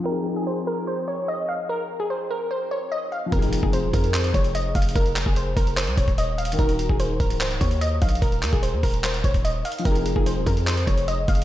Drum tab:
HH |------------------------------------------------|------------------------------------------------|x--x--x-----x-----x--x--x--x--x--x--x-----x-x-x-|x--x--x-----x-----x--x--x--x--x--x--x-----x-x-x-|
CP |------------------------------------------------|------------------------------------------------|------------------------x-----------------------|------x-----------------x-----------------------|
BD |------------------------------------------------|------------------------------------------------|o--------o--------o-----------o-----------o-----|o--------o--------o-----------o--o--------------|

HH |x--x--x-----x-----x--x--x--x--x--x--x-----x-x-x-|x--x--x--x--x-----o--x--x--x--x--x--x-----x-x-x-|x--x--x-----x-----x--x--x--x--x--x--x-----x-x---|
CP |------------------------x-----------------------|------x-----------------x-----------------------|------------------------x-----------------------|
BD |o--------o--------o-----------o-----------o-----|o--------o--------o-----------o--o--------------|o--------o--------o-----------o-----------o-----|